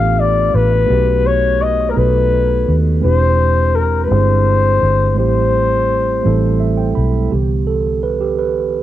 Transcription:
Already playing: A1 A3 B3 D4 F4 G4 F5
0.20 D5
0.54 A1 B4
0.86 A3 B3 D#4 F#4
0.90 B1 G4
1.27 C#5
1.62 D#5
1.90 A3 B3 A#4
1.95 B1 D#4 F#4 A4 B4
2.68 D#2
3.01 E1 G#3 C4 D4 E4 C5
3.05 G4
3.75 A#4
4.04 G#3 B4
4.09 G1 C4 D4 E4 G#4 C5
4.82 G1
5.14 A1 G3 A3 C4 E4
5.19 G4 C5
6.23 A1 G3 A3 C4 E4 A4
6.60 E5
6.77 G5
6.95 B1 B5
7.31 C2 D3 E3 B3 G4
7.67 A4
8.03 B4
8.21 G4
8.38 B4

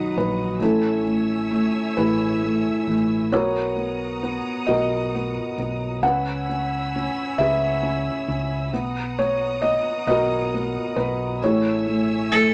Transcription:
Already playing: D#3 F#3 B3 D#4 F#4 B4 C#5 D#5 F#5 A#5 D#6
0.16 A#1 F#3 B4
0.60 A1 A3 E4 A4 C#5 E5 G#5 E6
0.64 C#4
1.05 A3
1.51 A3
1.96 A1 A3 E4 G#4 B4
2.42 A3
2.87 A1 A3
3.32 B1 B3 F#4 A#4 C#5 F#5 A#5 D#6
3.76 B3
4.23 B3
4.67 B1 B3 F#4 A#4 D#5
5.15 B3
5.58 B1 B3
6.02 C#2 C#4 B4 C#5 F#5 G#5 B5 E6
6.49 C#4
6.96 C#4
7.38 C#2 C#4 G#4 B4 E5
7.83 C#4
8.28 C#2 C#4
8.73 B1 B3 F#5 A#5 D#6
9.19 B3 C#5
9.62 B3 D#5
10.07 B1 B3 F#4 A#4 D#5
10.54 B3
10.96 B1 B3 B4
11.40 A1 A3 C#5 E5 G#5 E6
11.45 E4 G#4
11.86 A3
12.32 A3 A4

